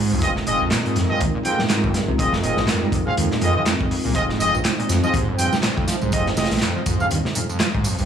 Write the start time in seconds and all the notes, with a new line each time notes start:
Already playing: G#2 G#3 C4 D#4 F4 C5
0.12 C2 F2
0.22 F1 G2 C4 F4 G#4 A#4 D#5, kick, closed hi-hat
0.36 C3, snare
0.47 F1 A#2 C4 F4 G#4 D#5, closed hi-hat
0.61 A#1 F2
0.71 A#2, snare, clap, closed hi-hat
0.85 G#2, closed hi-hat
0.96 F2, snare, closed hi-hat
1.10 G2 C4 F4 G#4 D#5, high conga
1.20 D#2 C3, kick, closed hi-hat
1.35 A#2
1.45 F2 C4 F4 G#4 G5, closed hi-hat
1.59 A#2, snare, high conga
1.69 G#2, snare, clap, closed hi-hat
1.83 D#1 F2, kick, low conga
1.94 G2, snare, closed hi-hat
2.08 C2 C3, high conga
2.19 F1 A#2 C4 F4 G#4 D#5, kick, closed hi-hat
2.33 F2, snare
2.43 F1 A#2 C4 F4 G#4 D#5, closed hi-hat
2.57 A#1 G#2, snare
2.68 F2, snare, clap, closed hi-hat
2.82 G2
2.92 F2 C3, kick, closed hi-hat
3.06 A#2 C4 F4 G#4 F5, high conga, low conga
3.17 D#2 F2, closed hi-hat
3.31 A#2, snare
3.41 F2 C4 F4 G#4 D#5, closed hi-hat, high conga
3.56 G#3 C4 F4 G#4 D#5
3.66 F2, snare, clap, closed hi-hat
3.80 D#1 F2, kick
3.91 F2, open hi-hat
4.05 C2 A#2
4.15 F1 F3 C4 F4 G#4 C5 D#5, kick, closed hi-hat, tambourine
4.29 G#2, snare
4.40 F1 F2 C4 F4 G#4 D#5, closed hi-hat, tambourine
4.54 A#1 G2, tambourine
4.64 C3, snare, clap, closed hi-hat, tambourine
4.79 A#2, closed hi-hat
4.89 F2, snare, closed hi-hat, tambourine
5.03 F3 C4 F4 G#4 D#5, tambourine, high conga
5.14 D#2 G#2, kick, closed hi-hat, tambourine
5.28 F2
5.38 F2 G2 C4 F4 G#4 G5, closed hi-hat, tambourine
5.53 C3, snare, tambourine, high conga
5.63 A#2, snare, clap, closed hi-hat, tambourine
5.77 D#1 F2, kick, low conga
5.87 F3, snare, closed hi-hat, tambourine
6.02 C2 G#2, tambourine, high conga
6.12 F1 F2 C4 F4 G#4 D#5, kick, closed hi-hat, tambourine
6.26 G2, snare
6.37 F1 C3 C4 F4 G#4 D#5, snare, closed hi-hat, tambourine
6.44 snare, closed hi-hat
6.51 A#1 A#2, snare, closed hi-hat, tambourine
6.57 snare, closed hi-hat
6.62 F2, snare, clap, closed hi-hat, tambourine
6.76 F3
6.86 F2 G#2, kick, closed hi-hat, tambourine
7.00 F2 C4 F4 G#4 F5, tambourine, high conga, low conga
7.11 D#2 G2, closed hi-hat, tambourine
7.25 C3, snare
7.35 F2 A#2, closed hi-hat, tambourine, high conga
7.49 F2, tambourine
7.60 F3, snare, clap, closed hi-hat, tambourine
7.74 D#1 G#2, kick
7.84 F2, open hi-hat, tambourine
7.98 C2 G2, tambourine